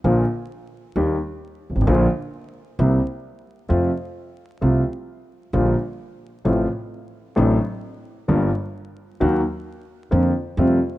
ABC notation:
X:1
M:4/4
L:1/16
Q:1/4=131
K:Bb
V:1 name="Grand piano" clef=bass
[B,,,B,,D,F,B,F]2 z6 [E,,E,G,B,G]2 z4 z/2 G,,,/2 _A,,,/2 =A,,,/2 | [B,,,B,,D,F,B,F]2 z6 [C,,C,G,B,=E]2 z6 | [F,,C,F,A,F]2 z6 [C,,C,F,A,F]2 z6 | [B,,,B,,D,G,B,F]2 z6 [A,,,A,,C,F,A,F]2 z6 |
[A,,,A,,C,^F,A,D]2 z6 [G,,,G,,D,G,B,=F]2 z6 | [E,,E,_G,B,_G]2 z6 [F,,D,F,B,F]2 z2 [F,,C,F,=G,A,F]2 z2 |]
V:2 name="Upright bass" clef=bass
B,,,3/2 z6 z/2 E,,3/2 z4 z G,,,/2 _A,,,/2 =A,,,/2 | B,,,3/2 z6 z/2 C,,3/2 z6 z/2 | F,,3/2 z6 z/2 C,,3/2 z6 z/2 | B,,,3/2 z6 z/2 A,,,3/2 z6 z/2 |
A,,,3/2 z6 z/2 G,,,3/2 z6 z/2 | E,,3/2 z6 z/2 F,,3/2 z2 z/2 F,,3/2 z2 z/2 |]